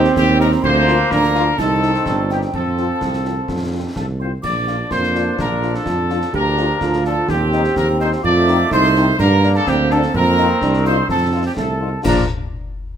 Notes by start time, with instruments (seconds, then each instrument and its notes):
Already playing: trombone section G3 C4, euphonium C4, trumpet section G4, flute section G5
0.04 snare
0.16 tuba D#2, trumpet section G4, flute section G5, concert bass drum, snare
0.40 french horn section G3 C4 D#4, trumpet section A#4, flute section A#5, snare
0.52 snare
0.63 tuba D2, trombone section F3 A#3, trumpet section C5, flute section C6, concert bass drum, crash
0.87 french horn section F3 A#3 F4, snare
1.11 tuba D2, euphonium D4, trumpet section A#4, flute section A#5, concert bass drum, snare
1.23 snare
1.35 french horn section F3 A#3 F4, snare
1.58 tuba C2, trombone section D#3 C4, euphonium D#4, trumpet section A4, flute section A5, concert bass drum, snare
1.82 french horn section G3 C4 D#4, snare
1.94 snare
2.06 tuba G1, euphonium D4, concert bass drum, snare
2.30 french horn section G3 C4 D#4, trumpet section G4, flute section G5, snare
2.42 snare
2.53 tuba F2, trombone section F3 C4, euphonium C4, trumpet section A4, flute section A5, concert bass drum, crash
2.77 french horn section F3 C4 F4, snare
3.01 tuba C2, concert bass drum, snare
3.13 snare
3.25 french horn section F3 C4 F4, snare
3.48 tuba F2, concert bass drum, snare
3.72 french horn section F3 C4 F4
3.96 tuba C2, trumpet section A4, flute section A5, concert bass drum, snare
4.19 french horn section F3 C4 F4, trumpet section C5, flute section C6
4.43 tuba A#1, trombone section F3 D4, trumpet section D5, flute section D6, concert bass drum, crash
4.67 french horn section F3 D4 F4, snare
4.91 tuba F2, euphonium A#3, trumpet section C5, flute section C6, concert bass drum, snare
5.03 snare
5.15 french horn section F3 D4 F4, snare
5.38 tuba A#1, euphonium D4, trumpet section A#4, flute section A#5, concert bass drum, snare
5.62 french horn section F3 D4 F4, snare
5.74 trumpet section A4, flute section A5, snare
5.86 tuba F2, euphonium F4, concert bass drum, snare
6.09 french horn section F3 D4 F4, snare
6.22 snare
6.33 tuba D2, trombone section F3 D4, euphonium G4, trumpet section A#4, flute section A#5, concert bass drum, crash
6.57 french horn section F3 D4 F4, snare
6.81 tuba D2, euphonium F4, concert bass drum, snare
6.93 snare
7.05 french horn section F3 D4 F4, trumpet section A4, flute section A5, snare
7.28 tuba D#2, trombone section C4, euphonium G4, trumpet section G4, flute section G5, concert bass drum, snare
7.52 french horn section G3 C4 D#4, snare
7.64 snare
7.76 tuba D#2, trumpet section A#4, flute section A#5, concert bass drum, snare
8.00 french horn section G3 C4 D#4, trumpet section C5, flute section C6, snare
8.12 snare
8.24 tuba F2, trombone section D#3 A3, euphonium F4, trumpet section D5, flute section D6, concert bass drum, crash
8.48 french horn section A3 C4 D#4, snare
8.71 tuba C2, euphonium D#4, trumpet section C5, flute section C6, concert bass drum, snare
8.83 snare
8.95 french horn section A3 C4 D#4, snare
9.19 tuba G2, trombone section D3 A#3, euphonium D4, trumpet section A#4, flute section A#5, concert bass drum, snare
9.43 french horn section A#3 D4, snare
9.55 trumpet section A4, flute section A5, snare
9.67 tuba D2, euphonium C4, trumpet section G4, flute section G5, concert bass drum, snare
9.90 french horn section A#3 D4, trumpet section A4, flute section A5, snare
10.02 snare
10.14 tuba F2, trombone section D#3 C4, euphonium A#3, trumpet section A#4, flute section A#5, concert bass drum, crash
10.38 french horn section C4 D#4 F4, snare
10.61 tuba C2, euphonium D4, concert bass drum, snare
10.73 snare
10.85 french horn section C4 D#4 F4, trumpet section C5, flute section C6, snare
11.09 tuba F2, euphonium C4, trumpet section A4, flute section A5, concert bass drum, snare
11.33 french horn section C4 D#4 F4
11.46 trumpet section G4, flute section G5
11.57 tuba C2, euphonium A3, trumpet section A4, flute section A5, concert bass drum, snare
11.80 french horn section C4 D#4 F4
12.04 tuba A#1, trombone section F3 D4, french horn section A#3 D4 F4, trumpet section A#4, flute section A#5, concert bass drum, snare, crash